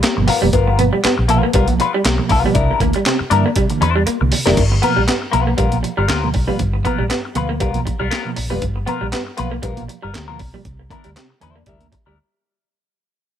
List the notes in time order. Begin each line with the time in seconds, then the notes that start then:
0.03 A#3, muted clean electric guitar stroke, muted fingered electric bass stroke, snare, clap, closed hi-hat
0.16 G1 B2 F3 A#3, muted clean electric guitar stroke
0.27 G2 B3 F4 A#4, muted clean electric guitar stroke, open hi-hat
0.42 F1 B2 F3 G3 A#3, muted clean electric guitar stroke
0.53 G1 B3 F4 A#4, kick, closed hi-hat
0.67 F3 A#3, muted clean electric guitar stroke
0.78 B2 F3 A#3 B3, closed hi-hat
0.93 G3, muted clean electric guitar stroke
1.04 G2 B3, muted fingered electric bass stroke, snare, clap, closed hi-hat
1.18 A#1, muted clean electric guitar stroke
1.28 B2 F3 A#3 B3 F4 A#4, muted clean electric guitar stroke, closed hi-hat
1.43 A#3, muted clean electric guitar stroke
1.53 B1 G2 G3 B3 F4 A#4, kick, closed hi-hat
1.68 B2 F3 A#3, muted clean electric guitar stroke, closed hi-hat
1.79 F3 A#3 B3 F4 B4, muted clean electric guitar stroke, closed hi-hat
1.93 G3, muted clean electric guitar stroke
2.04 B1 A#3, muted clean electric guitar stroke, snare, clap, closed hi-hat
2.18 B2 F3 A#3, muted clean electric guitar stroke
2.29 B1 G2 B3 F4 A#4, muted clean electric guitar stroke, kick, open hi-hat
2.44 B2 F3 G3 A#3, muted clean electric guitar stroke
2.54 C2 C3 D4 E4 A#4, kick, closed hi-hat
2.69 E3 A#3, muted clean electric guitar stroke
2.80 D2 D3 E3 A#3, kick, closed hi-hat
2.93 G3, muted clean electric guitar stroke, closed hi-hat
3.06 C3 C4, snare, clap, closed hi-hat
3.19 muted clean electric guitar stroke, muted fingered electric bass stroke
3.30 G2 D3 E3 A#3 D4 E4 A#4, muted clean electric guitar stroke, closed hi-hat
3.45 E3 A#3, muted clean electric guitar stroke
3.56 C3 G3, kick, closed hi-hat
3.70 D3 E3 A#3, muted clean electric guitar stroke, closed hi-hat
3.81 E2 E3 A#3 D4 E4 C5, muted clean electric guitar stroke, closed hi-hat
3.96 G3, muted clean electric guitar stroke
4.06 A#3, muted clean electric guitar stroke, muted fingered electric bass stroke, closed hi-hat
4.21 C2 D3 E3 A#3, muted clean electric guitar stroke
4.32 C3, muted clean electric guitar stroke, open hi-hat
4.46 F1 D3 E3 G3 A#3 D4 E4 A#4, snare
4.57 G1 G2, kick, closed hi-hat, crash
4.71 F3 A#3, muted clean electric guitar stroke
4.82 B2 F3 A#3 B3 F4 A#4, closed hi-hat
4.96 A#1 G3
5.08 G2 B3, muted clean electric guitar stroke, snare, clap, closed hi-hat
5.22 muted clean electric guitar stroke
5.32 B1 B2 F3 A#3 B3 F4 B4, muted clean electric guitar stroke, closed hi-hat
5.46 F3 A#3, muted clean electric guitar stroke
5.57 A#1 G2 G3 B3 F4 A#4, kick, closed hi-hat
5.72 B2 F3 A#3, closed hi-hat
5.83 F3 A#3, muted clean electric guitar stroke, closed hi-hat
5.97 G1 G3 B3 F4 A#4
6.08 D2 A#3 B3 F4 A#4, snare, clap, closed hi-hat
6.23 B2 F3 A#3
6.33 B1 G2, muted clean electric guitar stroke, kick, open hi-hat
6.47 B2 F3 G3 A#3 B3 F4 B4
6.59 G1 G2, kick, closed hi-hat
6.74 F3 A#3, muted clean electric guitar stroke
6.85 B2 F3 A#3 B3 F4 A#4, kick, closed hi-hat
6.99 A#1 G3
7.10 G2 B3, muted clean electric guitar stroke, snare, clap, closed hi-hat
7.25 muted clean electric guitar stroke
7.35 D2 B2 F3 A#3 B3 F4 B4, muted clean electric guitar stroke, closed hi-hat
7.49 F3 A#3, muted clean electric guitar stroke
7.60 B1 G3 B3 F4 A#4, kick, closed hi-hat
7.74 B2 F3 A#3, closed hi-hat
7.86 F3 A#3, muted clean electric guitar stroke, kick, closed hi-hat
7.99 B1 G3 B3 F4 A#4
8.11 A#3 B3 F4 A#4, snare, clap, closed hi-hat
8.25 B2 F3 A#3
8.36 A#1 G2, muted clean electric guitar stroke, open hi-hat
8.50 F1 B2 F3 G3 A#3 B3 F4 B4
8.62 G1 G2, kick, closed hi-hat
8.76 F3 A#3, muted clean electric guitar stroke
8.86 B2 F3 A#3 B3 F4 A#4, closed hi-hat
9.01 A#1 G3
9.12 G2 B3, muted clean electric guitar stroke, snare, clap, closed hi-hat
9.27 muted clean electric guitar stroke
9.37 B1 B2 F3 A#3 B3 F4 B4, muted clean electric guitar stroke, closed hi-hat
9.51 F3 A#3, muted clean electric guitar stroke
9.62 A#1 G2 G3 B3 F4 A#4, kick, closed hi-hat
9.77 B2 F3 A#3, closed hi-hat
9.89 F3 A#3, muted clean electric guitar stroke, closed hi-hat
10.02 G1 G3 B3 F4 A#4
10.14 D2 A#3, muted clean electric guitar stroke, snare, clap, closed hi-hat
10.28 B2 F3 A#3 B3 F4 A#4
10.39 B1 G2, muted clean electric guitar stroke, kick, open hi-hat
10.53 B2 F3 G3 A#3, muted clean electric guitar stroke
10.65 C2 C3, kick, closed hi-hat
10.79 E3 A#3, muted clean electric guitar stroke
10.90 D3 E3 A#3 D4 E4 A#4, kick, closed hi-hat
11.04 D2 G3, closed hi-hat
11.15 C3 C4, muted clean electric guitar stroke, snare, clap, closed hi-hat
11.30 muted clean electric guitar stroke
11.40 E2 D3 E3 A#3 D4 E4 C5, muted clean electric guitar stroke, closed hi-hat
11.56 A#3, muted clean electric guitar stroke
11.66 D2 C3 G3 D4 E4 A#4, kick, closed hi-hat
11.80 D3 E3 A#3, closed hi-hat
11.92 E3 A#3, muted clean electric guitar stroke, kick, closed hi-hat
12.06 D2 G3 D4 E4 A#4